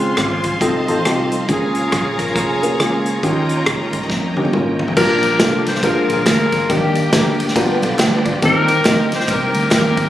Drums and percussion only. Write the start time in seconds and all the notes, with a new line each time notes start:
0.17 kick, cross-stick, closed hi-hat
0.44 kick, closed hi-hat
0.61 kick, closed hi-hat
0.88 closed hi-hat
1.05 cross-stick, closed hi-hat
1.32 closed hi-hat
1.48 kick, closed hi-hat
1.75 closed hi-hat
1.92 kick, cross-stick, closed hi-hat
2.19 kick, cross-stick, closed hi-hat
2.27 cross-stick
2.36 kick, closed hi-hat
2.63 closed hi-hat
2.80 cross-stick, closed hi-hat
3.06 closed hi-hat
3.23 kick, closed hi-hat
3.49 closed hi-hat
3.66 kick, cross-stick, closed hi-hat
3.93 kick, closed hi-hat
4.02 cross-stick
4.10 kick, snare
4.37 high tom
4.45 high tom
4.53 mid tom
4.79 floor tom
4.88 floor tom
4.97 kick, crash, tambourine
5.23 ride, tambourine
5.40 kick, snare, clap, ride, tambourine
5.66 snare, ride, tambourine
5.75 snare
5.83 kick, ride, tambourine
6.10 ride, tambourine
6.26 kick, snare, clap, ride, tambourine
6.52 kick, ride, tambourine
6.70 kick, ride, tambourine
6.95 ride, tambourine
7.13 kick, snare, clap, ride, tambourine
7.40 ride, tambourine
7.48 snare
7.56 kick, ride, tambourine
7.82 ride, tambourine
7.99 kick, snare, clap, ride, tambourine
8.25 kick, ride, tambourine
8.42 kick, ride, tambourine
8.68 ride, tambourine
8.85 kick, snare, clap, ride, tambourine
9.12 snare, ride, tambourine
9.20 snare
9.28 kick, ride, tambourine
9.54 ride, tambourine
9.71 kick, snare, clap, ride, tambourine
9.97 kick, ride, tambourine